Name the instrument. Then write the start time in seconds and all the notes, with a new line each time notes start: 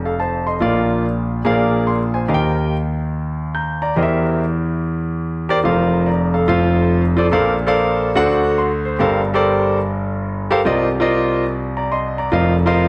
grand piano
Already playing: F1 F2
0.05 A4 F5
0.20 C5 A5
0.47 D#5 C6
0.60 A#1 A#2 F4 A#4 D5 F5
1.45 A#1 A#2 G#4 A#4 C5 F5
1.51 D5
1.87 C6
2.14 C5 G#5
2.28 D#2 D#3 G4 A#4 D#5 F5
2.34 G5
3.55 A#5 G6
3.82 D5 A#5
3.96 E2 E3 G4 A#4 C5 D#5
4.03 E5
5.49 G4 A#4 C5 D5
5.64 F1 F2 F4 A4 C5 F5
5.69 A#4
6.06 D5 A#5
6.34 A4 F5
6.48 F1 F2 F4 A4 C5 F5
7.17 F4 A4 C5 D5
7.31 A#1 A#2 A4 A#4 C5 D5 F5
7.67 A4 A#4 C5 D5 F5
8.15 D2 D3 F#4 A4 C5 D5 F#5
8.58 C6
8.85 C5
8.99 G1 G2 G4 A4 A#4 C5 F5
9.34 G4 A4 A#4 C5 D5
10.51 G4 A4 A#4 C5 F5
10.65 C2 C3 F4 A#4 C5 D5 D#5
11.00 F4 A#4 C5 D5 D#5
11.77 D5 A#5
11.92 D#5 C6
12.18 D5 A#5
12.32 F1 F2 F4 A#4 C5 D#5 F5
12.66 F4 A#4 C5 D#5 F5